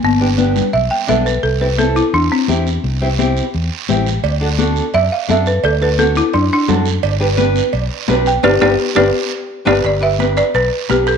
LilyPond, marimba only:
\new Staff \with { instrumentName = "Marimba" } { \time 4/4 \key g \major \tempo 4 = 171 b4 r4 e''8 g''8 e''8 b'8 | a'8 b'8 a'8 e'8 d'8 c'4.~ | c'4. r2 r8 | r2 e''8 f''8 e''8 b'8 |
a'8 b'8 a'8 e'8 d'8 d'4.~ | d'4. r2 g''8 | <g' b' d''>8 <g' b' d''>8 r8 <g' b' d''>8 r4. <g' b' d''>8 | d''8 e''4 d''8 b'4 g'8 a'8 | }